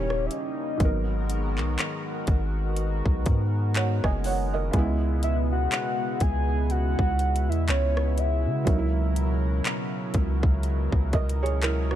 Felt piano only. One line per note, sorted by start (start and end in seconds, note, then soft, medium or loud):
0.00 0.80 D#3 soft
0.00 0.80 C#4 soft
0.00 0.81 E4 soft
0.00 0.81 G4 medium
0.77 4.68 G#2 medium
0.77 4.69 F#3 medium
0.82 4.71 B3 medium
0.82 3.24 A#4 medium
3.76 4.03 C#5 medium
3.76 4.03 F#5 medium
4.04 4.24 D#5 medium
4.04 4.24 G#5 medium
4.25 4.52 C#5 medium
4.25 4.52 F#5 medium
4.54 5.00 A#4 medium
4.54 5.00 D#5 medium
4.71 8.62 C#3 medium
4.71 8.63 G#3 medium
4.76 8.64 B3 medium
4.76 8.65 E4 medium
8.65 11.95 F#3 medium
8.65 11.95 A#3 medium
8.72 8.77 D#4 medium
8.78 10.66 E4 medium
11.14 11.41 A#4 medium
11.14 11.41 D#5 medium
11.43 11.62 G#4 medium
11.43 11.62 C#5 medium
11.63 11.90 E4 medium
11.63 11.90 A#4 medium
11.92 11.95 C#4 medium
11.92 11.95 F#4 medium